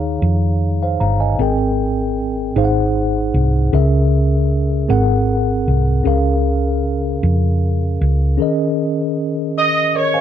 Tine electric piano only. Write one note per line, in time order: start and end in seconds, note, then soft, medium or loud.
0.00 0.18 D#3 medium
0.00 1.34 D#4 medium
0.00 1.35 G#4 medium
0.00 0.58 C#5 medium
0.00 0.59 F5 medium
0.82 1.00 C5 soft
0.82 1.00 F5 soft
1.00 1.19 F5 soft
1.00 1.19 A#5 soft
1.20 1.57 D#5 soft
1.20 1.57 G#5 medium
1.39 2.53 G#2 medium
1.39 2.56 C4 medium
1.39 2.55 G#4 medium
1.39 2.57 A#4 medium
1.39 2.58 G5 medium
2.56 3.69 G#2 medium
2.56 3.73 D#4 medium
2.56 3.72 G#4 medium
2.56 3.74 C5 medium
2.56 2.64 F5 medium
2.64 3.77 F#5 medium
3.73 4.86 C#3 medium
3.73 4.90 C#4 medium
3.73 4.88 G#4 medium
3.73 4.89 A#4 medium
3.73 4.91 E5 medium
4.89 6.03 G#2 medium
4.89 6.06 C4 medium
4.89 6.04 G#4 medium
4.89 6.06 A#4 medium
4.89 6.07 F#5 medium
6.04 7.19 C#3 medium
6.04 8.34 C#4 medium
6.04 8.35 G#4 medium
6.04 8.36 A#4 medium
6.04 8.36 F5 medium
8.37 9.52 D#3 medium
8.37 10.21 C#4 medium
8.37 10.21 G#4 medium
8.37 9.92 A#4 medium
8.42 9.93 D#5 medium
9.95 10.14 A#4 soft
9.95 10.14 D#5 medium
10.14 10.21 C5 soft
10.14 10.21 F5 medium
10.14 10.21 G#5 medium